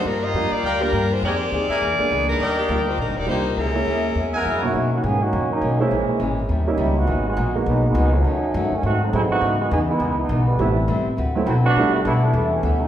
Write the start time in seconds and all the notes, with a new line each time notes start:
0.04 G2 F3 G3 A#3 D4 F4 A#4
0.24 A#3 F4 G4 D#5
0.34 F2 G2 F3 G3 A#3 D4 F4
0.51 A#3 F4 G4 D5, muted upright bass stroke
0.63 D2 G2 F3 A#3 D4 A#4 D5 F5 G5
0.80 G3 A#3 D4 F4 G4 A#4
0.92 G2 F3 A#3 D4
1.13 G#3 D4 F4 C5
1.22 F2 F3 A#3 C4 D#4 G4 G#4 A#4 D5 D#5 G5 G#5
1.52 D#2 F3 A#3 D#4 G#4
1.69 A#4 D5 E5 G#5, muted upright bass stroke
1.81 E2 E3 A#3 D4 G#4
1.99 G#3 A#3 B3 D4, muted upright bass stroke
2.11 C#2 E3 A#3 D4 G#4
2.29 G3 D4 D#4 A#4
2.40 D#2 D#3 G3 A#3 D4 A#4 D5 D#5 G5
2.59 D#3 A#3 D4 G4
2.69 D2 D#3 G3 A#3 D4 F4
2.87 G#3 D4 F4 C5
2.98 A#1 D#3 G3 A#3 D4 D#4 A#4
3.08 G1
3.17 D#1 A#3 D#4 G4 D5
3.26 C2 D#3 G3 A#3 D4 D#4 F4 G4 C5
3.56 C#2 F#3 G#3 A#3 C#4 E4 G#4 A#4
3.73 G#3 A#3 C#4 E4
3.85 D#2 F#3 A#3 E4 G#4
4.15 E2 F#3 A#3 E4 G#4
4.33 E3 G#3 A#3 C#4 A#4 E5 F#5 G#5
4.45 F#2 F#3 G#3 A#3 C#4 E4 G#4
4.62 B2 D#3 F#3 A#3 C#4 F#4
4.74 B2 D#3 A#3 C#4
4.92 D#3 A#3 C#4 F#4
5.04 G#2 B2 D#3 E3 A#3 C#4 G#4
5.21 D#3 A#3 C#4 F#4
5.33 F#2 B2 D#3 A#3 C#4
5.52 F#3 A#3 C#4 D#4
5.62 B1 B2 D#3 A#3 C#4
5.80 E3 G#3 A#3 C#4 E4 C5
5.91 A#1 A#2 E3 G#3 C#4
6.08 muted upright bass stroke
6.20 G#1 A#2 E3 G#3 C#4
6.49 D#2 D#3 G3 C#4 E4
6.67 G3 A#3 C#4 D#4 E4
6.78 C#2 D#3 G3 C#4 E4
6.82 A#3 E4
6.97 D#3 G#3 B3 F#4
7.07 G#1 G#2 F#3 B3 D#4
7.27 D#3 G#3 B3 F#4
7.37 A#1 G#2 F#3 B3 D#4
7.55 G#3 A#3 B3 D#4 F#4
7.66 B1 G#2 F#3 G#3 B3 D#4
7.85 D#3 G#3 B3 F#4
7.95 C#2 G#2 F#3 B3 D#4
8.15 F#3 A3 C#4 D#4
8.24 D#2 D#3 A3 C#4 F#4
8.54 F#2 D#3 A3 C#4 F#4
8.71 D#3 F#3 A3 C#4, muted upright bass stroke
8.83 G#2 D#3 F#3 A3 C4 F#4
9.02 F#3 A3 C4 D#4
9.12 G#2 A2 F#3 A3 C4 C#4 D#4 E4 G#4
9.30 E3 B3 D#4 F#4, muted upright bass stroke
9.41 G#2 C#3 E3 B3
9.45 D#4
9.59 D#3 G#3 B3 F#4
9.71 E2 C#3 E3 B3 D#4 G#4
9.88 D#3 G#3 B3 E4
10.00 C#2 C#3 E3 B3
10.04 D#4
10.18 E3 G#3 B3 D#4
10.29 B1 C#3 E3 B3 D#4
10.47 E3 G3 A3 B3
10.59 A1 A2 G3 A3 B3 C4 E4
10.88 G1 A2 G3 C4 E4
11.06 muted upright bass stroke
11.17 D2 D3 C4 F#4 B4
11.35 E3 F#3 A3 B3 C4 E4
11.45 B1 D3 F#3 A3 C4 E4 F#4 B4
11.63 E3 B3 D4 F#4
11.75 G1 G3 A3 B3 D4 E4 A4
11.79 E4
11.92 D3 G3 B3 F#4
12.05 B1 G3 A3 B3 D4 E4 A4
12.21 E3 A3 B3 D4
12.33 E2 G3 B3 E4 A4
12.50 E3 A3 B3 C#4
12.63 D2 G3 B3 E4 A4
12.81 E3 G#3 B3 D#4